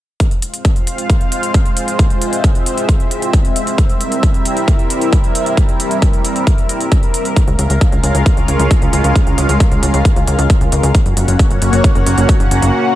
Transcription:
0.20 G#3 C4 F4 C5 F5, kick, closed hi-hat
0.31 closed hi-hat
0.42 closed hi-hat
0.54 closed hi-hat
0.65 kick, closed hi-hat
0.76 closed hi-hat
0.87 closed hi-hat
0.98 closed hi-hat
1.10 kick, closed hi-hat
1.21 closed hi-hat
1.32 closed hi-hat
1.43 closed hi-hat
1.54 kick, closed hi-hat
1.66 closed hi-hat
1.77 closed hi-hat
1.88 closed hi-hat
1.99 E5, kick, closed hi-hat
2.10 closed hi-hat
2.22 closed hi-hat
2.33 closed hi-hat
2.44 kick, closed hi-hat
2.55 closed hi-hat
2.66 closed hi-hat
2.78 closed hi-hat
2.89 kick, closed hi-hat
3.00 closed hi-hat
3.11 closed hi-hat
3.22 closed hi-hat
3.33 kick, closed hi-hat
3.45 closed hi-hat
3.56 closed hi-hat
3.67 closed hi-hat
3.78 G3 E4 A#4, kick, closed hi-hat
3.90 closed hi-hat
4.01 closed hi-hat
4.12 closed hi-hat
4.23 kick, closed hi-hat
4.34 closed hi-hat
4.45 closed hi-hat
4.57 closed hi-hat
4.68 kick, closed hi-hat
4.79 closed hi-hat
4.90 closed hi-hat
5.01 closed hi-hat
5.13 kick, closed hi-hat
5.24 closed hi-hat
5.35 closed hi-hat
5.46 closed hi-hat
5.57 kick, closed hi-hat
5.69 closed hi-hat
5.80 closed hi-hat
5.91 closed hi-hat
6.02 kick, closed hi-hat
6.13 closed hi-hat
6.25 closed hi-hat
6.36 closed hi-hat
6.47 kick, closed hi-hat
6.58 closed hi-hat
6.69 closed hi-hat
6.81 closed hi-hat
6.92 kick, closed hi-hat
7.03 closed hi-hat
7.14 closed hi-hat
7.25 closed hi-hat
7.36 G#3 C#4 F4 F5, kick, closed hi-hat
7.48 C#2, closed hi-hat
7.59 C#2, closed hi-hat
7.70 C#2, closed hi-hat
7.81 kick, closed hi-hat
7.92 C#2, closed hi-hat
8.04 C#2, closed hi-hat
8.15 C#2, closed hi-hat
8.26 kick, closed hi-hat
8.37 C#2, closed hi-hat
8.48 C#2, closed hi-hat
8.60 C#2, closed hi-hat
8.71 kick, closed hi-hat
8.82 C#2, closed hi-hat
8.93 C#2, closed hi-hat
9.04 C#2, closed hi-hat
9.16 kick, closed hi-hat
9.27 C#2, closed hi-hat
9.38 C#2, closed hi-hat
9.49 C#2, closed hi-hat
9.60 kick, closed hi-hat
9.72 C#2, closed hi-hat
9.83 C#2, closed hi-hat
9.94 C#2, closed hi-hat
10.05 kick, closed hi-hat
10.16 C#2, closed hi-hat
10.27 C#2, closed hi-hat
10.39 C#2, closed hi-hat
10.50 kick, closed hi-hat
10.61 C#2, closed hi-hat
10.72 C#2, closed hi-hat
10.83 C#2, closed hi-hat
10.95 A#3 C#4 F#4 C#5 F#5, kick, closed hi-hat
11.06 F#1, closed hi-hat
11.17 F#1, closed hi-hat
11.28 F#1, closed hi-hat
11.39 kick, closed hi-hat
11.51 F#1, closed hi-hat
11.62 F#1, closed hi-hat
11.73 F#1, closed hi-hat
11.84 kick, closed hi-hat
11.95 F#1, closed hi-hat
12.06 F#1, closed hi-hat
12.18 F#1, closed hi-hat
12.29 kick, closed hi-hat
12.40 F#1, closed hi-hat
12.51 F#1, closed hi-hat
12.62 F#1, closed hi-hat
12.74 C5

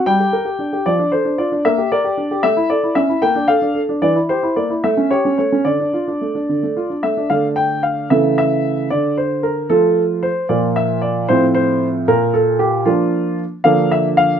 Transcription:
0.06 G3 G5
0.20 G4
0.33 A#4
0.45 G4
0.59 D4
0.73 G4
0.86 F3 D5
0.99 D4
1.12 A4 C5
1.25 D4
1.38 F4 D5
1.52 D4
1.65 A#3 E5
1.78 G4
1.92 A#4 D5
2.04 G4
2.17 D4
2.31 G4
2.43 A3 E5
2.57 E4
2.70 A4 D5
2.83 E4
2.95 C#4 E5
3.09 E4
3.22 A#3 G5
3.35 D4
3.48 A4 F5
3.62 D4
3.75 A4
3.89 D4
4.02 E3 D5
4.15 E4
4.29 G4 C5
4.43 E4
4.56 A#3 D5
4.70 E4
4.84 A3 E5
4.97 C#4
5.11 G4 C#5
5.25 C#4
5.38 A3 C#5
5.52 C#4
5.65 D3 D5
5.80 D4
5.93 F4
6.08 D4
6.21 A3
6.35 D4
6.49 D3
6.63 A3
6.76 F4
6.90 D4
7.03 A3 E5
7.17 D4
7.30 D3 A3 D4 A4 F5
7.56 G5
7.83 F5
8.10 C#3 E3 A3 A4 E5
8.38 E5
8.90 D3 D5
9.18 C5
9.43 A#4
9.70 F3 A3 F4 A4
10.23 C5
10.49 A#2 F3 A#3 F4 D5
10.76 E5
11.02 D5
11.29 A2 F3 C4 F4 C5
11.55 C5
12.08 A#2 A#4
12.34 A4
12.59 G4
12.86 F3 A#3 D4 F4
13.64 D3 F3 A#3 D4 F5
13.92 E5
14.17 F5

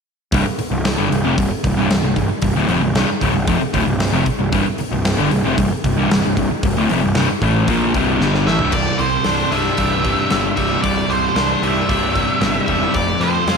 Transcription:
0.32 C1 C2 G2, kick, open hi-hat
0.45 muted overdriven electric guitar stroke, muted distorted electric guitar stroke, muted picked electric bass stroke
0.58 muted picked electric bass stroke, muted overdriven electric guitar stroke, muted distorted electric guitar stroke, open hi-hat
0.71 C1 C2 G2
0.85 snare, open hi-hat
0.98 G1 G2 D3
1.11 C1 C2 G2, open hi-hat
1.24 F1 F2 C3
1.38 C1 C2 G2, kick, open hi-hat
1.51 muted overdriven electric guitar stroke, muted distorted electric guitar stroke, muted picked electric bass stroke
1.64 C1 C2 G2, kick, open hi-hat
1.77 C1 C2 G2
1.90 C1 C2 G2, snare, open hi-hat
2.02 C1 C2 G2
2.16 C1 C2 G2, kick, open hi-hat
2.29 muted overdriven electric guitar stroke, muted picked electric bass stroke, muted distorted electric guitar stroke
2.42 C1 C2 G2, kick, open hi-hat
2.55 D1 D2 A2
2.66 F1 F2 C3, open hi-hat
2.80 C1 C2 G2
2.92 C1 C2, snare, open hi-hat
2.96 G2
3.06 muted picked electric bass stroke, muted distorted electric guitar stroke, muted overdriven electric guitar stroke
3.21 D1 D2 A2, kick, open hi-hat
3.32 C1 C2 G2
3.47 F1 F2 C3, kick, open hi-hat
3.59 muted picked electric bass stroke, muted overdriven electric guitar stroke, muted distorted electric guitar stroke
3.74 D1 D2 A2, kick, open hi-hat
3.85 C1 C2 G2
4.00 snare, open hi-hat
4.12 F1 F2 C3
4.26 muted picked electric bass stroke, muted overdriven electric guitar stroke, muted distorted electric guitar stroke, kick, open hi-hat
4.39 C1 C2 G2
4.52 C1 C2 G2, kick, open hi-hat
4.65 muted overdriven electric guitar stroke, muted picked electric bass stroke, muted distorted electric guitar stroke
4.78 muted picked electric bass stroke, muted overdriven electric guitar stroke, muted distorted electric guitar stroke, open hi-hat
4.91 C1 C2 G2
5.05 snare, open hi-hat
5.18 G1 G2 D3
5.31 C1 C2 G2, open hi-hat
5.44 F1 F2 C3
5.57 C1 C2 G2, kick, open hi-hat
5.71 muted distorted electric guitar stroke, muted overdriven electric guitar stroke, muted picked electric bass stroke
5.84 C1 C2 G2, kick, open hi-hat
5.97 C1 C2 G2
6.11 C1 C2 G2, snare, open hi-hat
6.23 C1 C2 G2
6.37 C1 C2 G2, kick, open hi-hat
6.51 muted overdriven electric guitar stroke, muted distorted electric guitar stroke, muted picked electric bass stroke
6.63 C1 C2 G2, kick, open hi-hat
6.77 D1 D2 A2
6.89 F1 F2 C3, open hi-hat
7.03 C1 C2 G2
7.15 C1 C2 G2, snare, open hi-hat
7.29 muted distorted electric guitar stroke, muted overdriven electric guitar stroke, muted picked electric bass stroke
7.42 A1 A2 E3 A3, kick, open hi-hat
7.68 A#1 A#2 F3 A#3, kick, open hi-hat
7.94 C1 C2 G2 C3, kick, open hi-hat
8.21 G1 G2 D3 G3, snare
8.34 snare
8.47 A1 A2 E3 E5, snare
8.59 C1 C2 G2, floor tom
8.72 C1 C2 D5, kick, crash
8.99 C2 C3 C5, open hi-hat
9.24 C2 G2 D4, snare, open hi-hat
9.51 C2 G3 E5, open hi-hat
9.77 C1 G2 D4, kick, open hi-hat
10.04 C3 G3, kick, open hi-hat
10.30 G1 G2 C3, snare, open hi-hat
10.56 C1 G2 G3 E5, kick, open hi-hat
10.82 C1 C2 D5, kick, open hi-hat
11.08 C2 C3 C5, snare, open hi-hat
11.35 C2 G2 D4, snare, open hi-hat
11.62 C2 G3 E5, open hi-hat
11.88 C1 G2 D4, kick, open hi-hat
12.15 C3 G3, kick, open hi-hat
12.41 G1 G2 C3, snare, open hi-hat
12.66 E1 G2 G3 E5, kick, open hi-hat
12.94 F1 F2 D5, kick, open hi-hat
13.20 F2 A3 C5, snare, open hi-hat
13.47 F2 F3 F4, snare, open hi-hat

